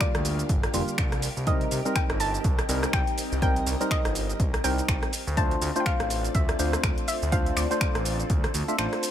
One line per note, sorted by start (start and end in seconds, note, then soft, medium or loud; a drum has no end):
0.00 0.71 D3 loud
0.00 0.71 G3 loud
0.00 0.71 A#3 medium
0.00 1.19 D4 medium
0.00 0.71 F4 loud
0.00 5.09 G4 medium
0.00 5.09 A#4 medium
0.00 1.18 D5 medium
0.00 1.19 F5 loud
0.00 finger snap loud
0.00 kick loud
0.00 closed hi-hat medium
0.00 shaker soft
0.15 0.43 D2 medium
0.15 cross-stick medium
0.15 closed hi-hat medium
0.25 open hi-hat medium
0.25 shaker medium
0.39 closed hi-hat soft
0.39 shaker soft
0.49 0.66 G1 medium
0.49 kick loud
0.49 closed hi-hat medium
0.49 shaker soft
0.63 cross-stick medium
0.63 closed hi-hat soft
0.74 0.83 F1 loud
0.74 1.21 D3 medium
0.74 1.21 G3 medium
0.74 1.21 A#3 medium
0.74 1.21 F4 loud
0.74 open hi-hat loud
0.74 shaker medium
0.88 closed hi-hat soft
0.88 shaker soft
0.98 1.28 C2 medium
0.98 finger snap loud
0.98 kick loud
0.98 closed hi-hat medium
0.98 shaker soft
1.12 cross-stick medium
1.12 closed hi-hat soft
1.22 5.09 C4 medium
1.22 5.09 D#5 medium
1.22 open hi-hat loud
1.22 shaker medium
1.37 1.65 C2 medium
1.37 shaker soft
1.47 1.82 G3 loud
1.47 1.82 C4 medium
1.47 1.82 D#4 medium
1.47 1.82 A#4 loud
1.47 1.92 D#5 loud
1.47 kick loud
1.47 closed hi-hat medium
1.47 shaker soft
1.61 closed hi-hat medium
1.71 1.80 C2 loud
1.71 open hi-hat loud
1.71 shaker medium
1.85 2.66 G3 loud
1.85 2.66 C4 medium
1.85 2.66 D#4 medium
1.85 2.66 A#4 loud
1.85 closed hi-hat soft
1.85 shaker soft
1.96 2.21 G5 loud
1.96 finger snap loud
1.96 kick loud
1.96 closed hi-hat medium
1.96 shaker soft
2.10 2.38 G1 medium
2.10 cross-stick medium
2.10 closed hi-hat medium
2.20 2.95 A5 loud
2.20 open hi-hat medium
2.20 shaker medium
2.34 closed hi-hat soft
2.34 shaker soft
2.44 2.61 C2 medium
2.44 kick loud
2.44 closed hi-hat medium
2.44 shaker soft
2.59 cross-stick medium
2.59 closed hi-hat medium
2.68 2.86 C2 loud
2.68 3.39 G3 medium
2.68 3.39 C4 medium
2.68 3.40 D#4 medium
2.68 3.40 A#4 loud
2.68 open hi-hat loud
2.68 shaker medium
2.83 cross-stick medium
2.83 closed hi-hat soft
2.83 shaker soft
2.93 3.02 C2 medium
2.93 3.41 G5 loud
2.93 finger snap loud
2.93 kick loud
2.93 closed hi-hat medium
2.93 shaker soft
3.07 closed hi-hat soft
3.18 open hi-hat medium
3.18 shaker medium
3.32 3.60 C2 loud
3.32 shaker soft
3.42 3.77 G3 medium
3.42 3.77 C4 medium
3.42 3.77 D#4 medium
3.42 3.77 A#4 loud
3.42 3.92 G5 loud
3.42 kick loud
3.42 closed hi-hat medium
3.42 shaker soft
3.56 closed hi-hat medium
3.66 3.75 C2 loud
3.66 open hi-hat loud
3.66 shaker medium
3.80 4.61 G3 loud
3.80 4.61 C4 medium
3.80 4.62 D#4 medium
3.80 4.62 A#4 loud
3.80 closed hi-hat soft
3.80 shaker soft
3.91 4.66 D#5 medium
3.91 finger snap loud
3.91 kick loud
3.91 closed hi-hat medium
3.91 shaker soft
4.05 4.34 G1 medium
4.05 cross-stick medium
4.05 closed hi-hat medium
4.15 open hi-hat medium
4.15 shaker medium
4.30 closed hi-hat soft
4.30 shaker soft
4.40 4.56 C2 medium
4.40 kick loud
4.40 closed hi-hat medium
4.40 shaker soft
4.54 cross-stick medium
4.54 closed hi-hat medium
4.64 4.81 C2 loud
4.64 5.11 G3 medium
4.64 5.11 C4 medium
4.64 5.12 D#4 medium
4.64 5.12 A#4 loud
4.64 5.39 G5 loud
4.64 open hi-hat loud
4.64 shaker medium
4.78 closed hi-hat soft
4.78 shaker soft
4.88 4.97 C2 medium
4.88 finger snap loud
4.88 kick loud
4.88 closed hi-hat medium
4.88 shaker soft
5.03 cross-stick medium
5.03 closed hi-hat medium
5.13 9.11 C4 medium
5.13 9.11 F4 medium
5.13 9.11 A4 medium
5.13 9.11 D5 medium
5.13 open hi-hat medium
5.13 shaker medium
5.27 5.55 D2 loud
5.27 shaker soft
5.37 5.72 A3 loud
5.37 5.72 D4 medium
5.37 5.72 F4 medium
5.37 5.72 C5 loud
5.37 5.77 A5 loud
5.37 kick loud
5.37 closed hi-hat medium
5.37 shaker soft
5.51 closed hi-hat medium
5.61 5.70 D2 loud
5.61 open hi-hat loud
5.61 shaker medium
5.75 6.56 A3 loud
5.75 6.57 D4 medium
5.75 6.57 F4 loud
5.75 6.57 C5 loud
5.75 closed hi-hat soft
5.75 shaker soft
5.80 5.86 G5 medium
5.86 6.36 F5 loud
5.86 finger snap loud
5.86 kick loud
5.86 closed hi-hat medium
5.86 shaker soft
6.00 6.29 A1 medium
6.00 cross-stick medium
6.00 closed hi-hat medium
6.10 open hi-hat medium
6.10 shaker medium
6.24 closed hi-hat soft
6.24 shaker medium
6.35 6.52 D2 medium
6.35 6.80 E5 medium
6.35 kick loud
6.35 closed hi-hat medium
6.35 shaker soft
6.49 cross-stick medium
6.49 closed hi-hat medium
6.59 6.76 D2 loud
6.59 7.30 A3 medium
6.59 7.30 D4 medium
6.59 7.30 F4 medium
6.59 7.30 C5 loud
6.59 open hi-hat loud
6.59 shaker medium
6.73 cross-stick medium
6.73 closed hi-hat soft
6.73 shaker soft
6.83 6.92 D2 medium
6.83 finger snap loud
6.83 kick loud
6.83 closed hi-hat medium
6.83 shaker soft
6.98 closed hi-hat medium
7.08 7.33 E5 loud
7.08 open hi-hat medium
7.08 shaker medium
7.22 7.51 D2 loud
7.22 shaker soft
7.32 7.67 A3 medium
7.32 7.67 D4 medium
7.32 7.67 F4 medium
7.32 7.67 C5 loud
7.32 7.57 F5 loud
7.32 kick loud
7.32 closed hi-hat medium
7.32 shaker soft
7.46 closed hi-hat medium
7.57 7.66 D2 loud
7.57 8.99 D5 medium
7.57 finger snap medium
7.57 open hi-hat loud
7.57 shaker medium
7.70 8.52 A3 loud
7.70 8.52 D4 medium
7.70 8.52 F4 medium
7.70 8.52 C5 loud
7.70 closed hi-hat soft
7.70 shaker soft
7.81 finger snap loud
7.81 kick loud
7.81 closed hi-hat medium
7.81 shaker soft
7.95 8.24 A1 medium
7.95 cross-stick medium
7.95 closed hi-hat medium
8.05 open hi-hat medium
8.05 shaker medium
8.20 closed hi-hat soft
8.20 shaker medium
8.30 8.47 D2 medium
8.30 kick loud
8.30 closed hi-hat medium
8.30 shaker soft
8.44 cross-stick medium
8.44 closed hi-hat medium
8.54 8.63 D2 loud
8.54 open hi-hat loud
8.54 shaker medium
8.68 8.76 A3 medium
8.68 8.76 D4 medium
8.68 8.76 F4 medium
8.68 8.76 E5 medium
8.68 closed hi-hat soft
8.68 shaker soft
8.78 8.87 A1 medium
8.78 9.11 A3 loud
8.78 9.11 D4 medium
8.78 9.11 F4 medium
8.78 9.11 C5 loud
8.78 finger snap loud
8.78 closed hi-hat medium
8.78 shaker soft
8.93 cross-stick medium
8.93 closed hi-hat medium
9.03 open hi-hat medium
9.03 shaker medium